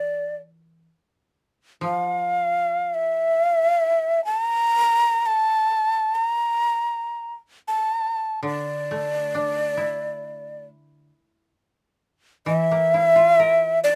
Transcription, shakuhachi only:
Already playing: D5
1.84 F5
2.94 E5
4.25 A5
4.42 A#5
5.26 A5
6.15 A#5
7.68 A5
8.46 D5
12.47 E5
13.84 D5

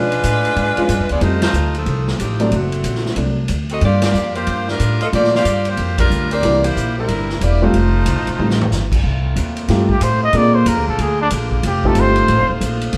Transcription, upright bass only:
Already playing: B2
0.24 A2
0.56 G#2
0.77 muted upright bass stroke
0.88 G2
1.00 F2
1.10 D2
1.21 F2
1.53 D2
1.86 C2
2.19 A1
2.51 F#1
2.84 A#1
3.16 C2
3.49 D2
3.82 G2
4.14 F2
4.47 G2
4.80 A2
5.13 A#2
5.45 G2
5.77 F2
6.10 D2
6.43 C2
6.76 A#1
7.08 G1
7.41 E1
7.73 F1
8.06 C2
8.16 A1
8.28 F1
8.39 A1
8.71 G1
9.03 C2
9.36 D#2
9.68 G2
10.01 A2
10.33 A#2
10.65 F2
10.77 D2
10.88 A#1
10.98 D2
11.31 A#1
11.63 F1
11.95 G1
12.28 A1
12.39 F1
12.49 D#1
12.61 A#1
12.93 C2

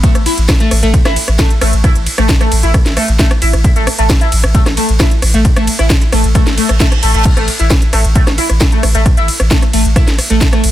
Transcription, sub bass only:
0.15 A1
0.37 A1
0.71 A1
0.83 A1
1.05 A1
1.28 A1
1.61 A1
1.73 A1
1.96 A1
2.18 A1
2.52 A1
2.63 A1
2.86 A1
3.08 A1
3.42 A1
3.53 A1
3.76 A1
3.98 A1
4.32 A1
4.44 A1
4.66 A1
4.89 A1
5.22 A1
5.34 A1
5.56 A1
5.79 A1
6.13 A1
6.24 A1
6.47 A1
6.69 A1
7.03 A1
7.14 A1
7.37 A1
7.59 A1
7.93 A1
8.05 A1
8.27 A1
8.50 A1
8.83 A1
8.95 A1
9.17 A1
9.40 A1
9.73 A1
9.85 A1
10.07 A1
10.30 A1
10.64 A1

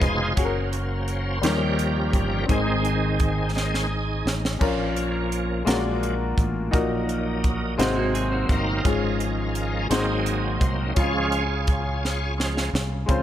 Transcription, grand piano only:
Already playing: C#3 G#3 B3 C#4 F4 B4
0.36 C#4 F#4 G#4
0.45 A#4
1.42 D#3 G3 A#3 C#4 D#4 A#4
2.46 G#2 C4 D#4
2.51 G#4
4.59 A#2 C#4 F4 A#4
5.65 G#3 A#3 C#4 F4 F#4 A#4
5.72 D4
6.71 A#2 D#4 F#4 A#4
7.78 C3 G#3 C4 D#4 F#4 C5
8.83 G#2 C#4 F4 G#4
9.89 G#2 G#3 C4 D#4 F#4 C5
10.94 C#3 C#4 F4
10.99 G#4
13.06 C#3 G#3 C4 C#4
13.10 F4 C5

